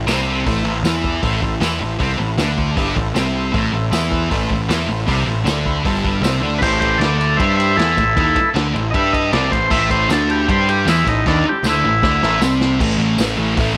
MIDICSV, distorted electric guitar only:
0, 0, Header, 1, 3, 480
1, 0, Start_track
1, 0, Key_signature, 0, "minor"
1, 0, Tempo, 385604
1, 579, Time_signature, 4, 2, 24, 8
1, 17143, End_track
2, 0, Start_track
2, 0, Title_t, "Distorted electric guitar"
2, 0, Program_c, 0, 30
2, 83, Note_on_c, 0, 60, 90
2, 84, Note_on_c, 0, 48, 79
2, 562, Note_off_c, 0, 48, 0
2, 563, Note_off_c, 0, 60, 0
2, 567, Note_on_c, 0, 45, 83
2, 591, Note_on_c, 0, 57, 98
2, 796, Note_off_c, 0, 45, 0
2, 810, Note_on_c, 0, 45, 73
2, 816, Note_off_c, 0, 57, 0
2, 1005, Note_off_c, 0, 45, 0
2, 1052, Note_on_c, 0, 52, 85
2, 1071, Note_on_c, 0, 64, 97
2, 1525, Note_off_c, 0, 52, 0
2, 1535, Note_off_c, 0, 64, 0
2, 1535, Note_on_c, 0, 45, 88
2, 1544, Note_on_c, 0, 57, 96
2, 1745, Note_off_c, 0, 45, 0
2, 1760, Note_on_c, 0, 45, 66
2, 1771, Note_off_c, 0, 57, 0
2, 1958, Note_off_c, 0, 45, 0
2, 2000, Note_on_c, 0, 52, 81
2, 2021, Note_on_c, 0, 64, 89
2, 2238, Note_off_c, 0, 52, 0
2, 2245, Note_on_c, 0, 45, 70
2, 2249, Note_off_c, 0, 64, 0
2, 2440, Note_off_c, 0, 45, 0
2, 2480, Note_on_c, 0, 48, 94
2, 2495, Note_on_c, 0, 60, 93
2, 2718, Note_off_c, 0, 48, 0
2, 2725, Note_off_c, 0, 60, 0
2, 2727, Note_on_c, 0, 45, 66
2, 2921, Note_off_c, 0, 45, 0
2, 2962, Note_on_c, 0, 50, 90
2, 2971, Note_on_c, 0, 62, 106
2, 3430, Note_on_c, 0, 43, 100
2, 3438, Note_off_c, 0, 50, 0
2, 3443, Note_off_c, 0, 62, 0
2, 3451, Note_on_c, 0, 55, 104
2, 3672, Note_off_c, 0, 43, 0
2, 3682, Note_on_c, 0, 45, 68
2, 3683, Note_off_c, 0, 55, 0
2, 3877, Note_off_c, 0, 45, 0
2, 3915, Note_on_c, 0, 48, 77
2, 3925, Note_on_c, 0, 60, 95
2, 4384, Note_off_c, 0, 48, 0
2, 4389, Note_on_c, 0, 45, 90
2, 4399, Note_off_c, 0, 60, 0
2, 4408, Note_on_c, 0, 57, 96
2, 4627, Note_off_c, 0, 45, 0
2, 4640, Note_off_c, 0, 57, 0
2, 4642, Note_on_c, 0, 45, 74
2, 4837, Note_off_c, 0, 45, 0
2, 4876, Note_on_c, 0, 52, 88
2, 4888, Note_on_c, 0, 64, 102
2, 5347, Note_off_c, 0, 52, 0
2, 5352, Note_on_c, 0, 45, 87
2, 5353, Note_off_c, 0, 64, 0
2, 5358, Note_on_c, 0, 57, 101
2, 5588, Note_off_c, 0, 45, 0
2, 5596, Note_off_c, 0, 57, 0
2, 5603, Note_on_c, 0, 45, 72
2, 5797, Note_off_c, 0, 45, 0
2, 5829, Note_on_c, 0, 52, 84
2, 5843, Note_on_c, 0, 64, 86
2, 6060, Note_off_c, 0, 52, 0
2, 6065, Note_on_c, 0, 45, 73
2, 6078, Note_off_c, 0, 64, 0
2, 6268, Note_off_c, 0, 45, 0
2, 6306, Note_on_c, 0, 48, 97
2, 6327, Note_on_c, 0, 60, 109
2, 6549, Note_off_c, 0, 48, 0
2, 6556, Note_on_c, 0, 45, 70
2, 6560, Note_off_c, 0, 60, 0
2, 6754, Note_off_c, 0, 45, 0
2, 6776, Note_on_c, 0, 50, 89
2, 6791, Note_on_c, 0, 62, 105
2, 7264, Note_on_c, 0, 43, 81
2, 7265, Note_off_c, 0, 50, 0
2, 7272, Note_off_c, 0, 62, 0
2, 7287, Note_on_c, 0, 55, 103
2, 7743, Note_on_c, 0, 48, 80
2, 7749, Note_off_c, 0, 43, 0
2, 7758, Note_on_c, 0, 60, 92
2, 7761, Note_off_c, 0, 55, 0
2, 7972, Note_off_c, 0, 48, 0
2, 7977, Note_on_c, 0, 50, 87
2, 7991, Note_off_c, 0, 60, 0
2, 7996, Note_on_c, 0, 62, 89
2, 8225, Note_off_c, 0, 50, 0
2, 8230, Note_on_c, 0, 45, 88
2, 8235, Note_off_c, 0, 62, 0
2, 8243, Note_on_c, 0, 57, 109
2, 8706, Note_off_c, 0, 45, 0
2, 8711, Note_on_c, 0, 50, 89
2, 8717, Note_off_c, 0, 57, 0
2, 8722, Note_on_c, 0, 62, 94
2, 9185, Note_on_c, 0, 55, 80
2, 9193, Note_off_c, 0, 50, 0
2, 9199, Note_off_c, 0, 62, 0
2, 9209, Note_on_c, 0, 67, 110
2, 9671, Note_off_c, 0, 55, 0
2, 9682, Note_on_c, 0, 52, 84
2, 9683, Note_off_c, 0, 67, 0
2, 9696, Note_on_c, 0, 64, 102
2, 9919, Note_off_c, 0, 52, 0
2, 9926, Note_off_c, 0, 64, 0
2, 9930, Note_on_c, 0, 45, 75
2, 10123, Note_off_c, 0, 45, 0
2, 10165, Note_on_c, 0, 51, 90
2, 10173, Note_on_c, 0, 63, 105
2, 10401, Note_off_c, 0, 51, 0
2, 10405, Note_off_c, 0, 63, 0
2, 10627, Note_on_c, 0, 50, 86
2, 10637, Note_on_c, 0, 62, 109
2, 10872, Note_off_c, 0, 50, 0
2, 10877, Note_off_c, 0, 62, 0
2, 10878, Note_on_c, 0, 45, 80
2, 11077, Note_off_c, 0, 45, 0
2, 11125, Note_on_c, 0, 55, 104
2, 11132, Note_on_c, 0, 67, 105
2, 11600, Note_on_c, 0, 48, 81
2, 11602, Note_off_c, 0, 55, 0
2, 11606, Note_off_c, 0, 67, 0
2, 11608, Note_on_c, 0, 60, 100
2, 11836, Note_off_c, 0, 48, 0
2, 11841, Note_on_c, 0, 45, 74
2, 11844, Note_off_c, 0, 60, 0
2, 12040, Note_off_c, 0, 45, 0
2, 12078, Note_on_c, 0, 45, 90
2, 12082, Note_on_c, 0, 57, 111
2, 12560, Note_off_c, 0, 45, 0
2, 12562, Note_off_c, 0, 57, 0
2, 12572, Note_on_c, 0, 50, 105
2, 12584, Note_on_c, 0, 62, 109
2, 13046, Note_on_c, 0, 55, 103
2, 13047, Note_off_c, 0, 50, 0
2, 13047, Note_on_c, 0, 67, 114
2, 13053, Note_off_c, 0, 62, 0
2, 13507, Note_on_c, 0, 52, 98
2, 13524, Note_on_c, 0, 64, 93
2, 13525, Note_off_c, 0, 55, 0
2, 13526, Note_off_c, 0, 67, 0
2, 13753, Note_off_c, 0, 52, 0
2, 13758, Note_on_c, 0, 45, 77
2, 13764, Note_off_c, 0, 64, 0
2, 13960, Note_off_c, 0, 45, 0
2, 14023, Note_on_c, 0, 51, 91
2, 14038, Note_on_c, 0, 63, 105
2, 14254, Note_off_c, 0, 51, 0
2, 14261, Note_off_c, 0, 63, 0
2, 14502, Note_on_c, 0, 50, 95
2, 14521, Note_on_c, 0, 62, 115
2, 14734, Note_off_c, 0, 50, 0
2, 14743, Note_off_c, 0, 62, 0
2, 14752, Note_on_c, 0, 45, 81
2, 14938, Note_off_c, 0, 45, 0
2, 14979, Note_on_c, 0, 50, 111
2, 14986, Note_on_c, 0, 62, 103
2, 15213, Note_off_c, 0, 50, 0
2, 15216, Note_off_c, 0, 62, 0
2, 15221, Note_on_c, 0, 45, 91
2, 15242, Note_on_c, 0, 57, 113
2, 15453, Note_off_c, 0, 45, 0
2, 15458, Note_on_c, 0, 48, 95
2, 15462, Note_off_c, 0, 57, 0
2, 15467, Note_on_c, 0, 60, 101
2, 15922, Note_off_c, 0, 48, 0
2, 15927, Note_on_c, 0, 45, 90
2, 15937, Note_off_c, 0, 60, 0
2, 15956, Note_on_c, 0, 52, 106
2, 15971, Note_on_c, 0, 57, 103
2, 16153, Note_off_c, 0, 57, 0
2, 16158, Note_on_c, 0, 57, 74
2, 16207, Note_off_c, 0, 52, 0
2, 16212, Note_on_c, 0, 52, 63
2, 16413, Note_off_c, 0, 45, 0
2, 16418, Note_on_c, 0, 45, 85
2, 16437, Note_off_c, 0, 52, 0
2, 16442, Note_on_c, 0, 52, 79
2, 16458, Note_off_c, 0, 57, 0
2, 16463, Note_on_c, 0, 57, 95
2, 16631, Note_off_c, 0, 57, 0
2, 16636, Note_on_c, 0, 57, 81
2, 16670, Note_off_c, 0, 52, 0
2, 16675, Note_on_c, 0, 52, 65
2, 16856, Note_off_c, 0, 45, 0
2, 16861, Note_on_c, 0, 45, 93
2, 16878, Note_off_c, 0, 52, 0
2, 16893, Note_on_c, 0, 52, 105
2, 16916, Note_off_c, 0, 57, 0
2, 16921, Note_on_c, 0, 57, 112
2, 17103, Note_off_c, 0, 57, 0
2, 17142, Note_off_c, 0, 52, 0
2, 17143, Note_off_c, 0, 45, 0
2, 17143, End_track
3, 0, Start_track
3, 0, Title_t, "Muted distorted electric guitar strokes"
3, 10418, Note_on_c, 9, 29, 58
3, 10543, Note_off_c, 9, 29, 0
3, 14261, Note_on_c, 9, 29, 62
3, 14385, Note_off_c, 9, 29, 0
3, 17143, End_track
0, 0, End_of_file